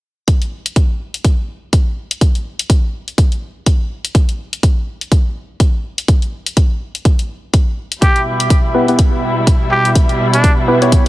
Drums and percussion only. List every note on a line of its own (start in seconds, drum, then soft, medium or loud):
0.28 kick loud
0.28 closed hi-hat medium
0.42 closed hi-hat soft
0.66 closed hi-hat medium
0.76 kick loud
0.76 closed hi-hat medium
1.14 closed hi-hat soft
1.25 kick loud
1.25 closed hi-hat medium
1.73 kick medium
1.73 closed hi-hat medium
2.11 closed hi-hat medium
2.21 kick loud
2.21 closed hi-hat medium
2.35 closed hi-hat soft
2.59 closed hi-hat medium
2.70 kick loud
2.70 closed hi-hat medium
3.08 closed hi-hat soft
3.18 kick loud
3.18 closed hi-hat medium
3.32 closed hi-hat soft
3.66 kick loud
3.66 closed hi-hat medium
4.05 closed hi-hat soft
4.15 kick loud
4.15 closed hi-hat medium
4.29 closed hi-hat soft
4.53 closed hi-hat medium
4.63 kick loud
4.63 closed hi-hat medium
5.01 closed hi-hat soft
5.12 kick loud
5.12 closed hi-hat medium
5.60 kick loud
5.60 closed hi-hat medium
5.98 closed hi-hat soft
6.08 kick loud
6.08 closed hi-hat medium
6.22 closed hi-hat soft
6.46 closed hi-hat soft
6.57 kick loud
6.57 closed hi-hat medium
6.95 closed hi-hat soft
7.05 kick loud
7.05 closed hi-hat medium
7.19 closed hi-hat soft
7.54 kick loud
7.54 closed hi-hat medium
7.92 closed hi-hat soft
8.02 kick loud
8.02 closed hi-hat medium
8.16 closed hi-hat soft
8.40 closed hi-hat soft
8.50 kick loud
8.50 closed hi-hat medium
8.88 closed hi-hat soft
8.99 kick loud
8.99 closed hi-hat medium
9.47 kick loud
9.47 closed hi-hat medium
9.85 closed hi-hat soft
9.95 kick loud
9.95 closed hi-hat medium
10.09 closed hi-hat soft
10.34 closed hi-hat medium
10.44 kick loud
10.44 closed hi-hat medium
10.82 closed hi-hat soft
10.92 kick loud
10.92 closed hi-hat medium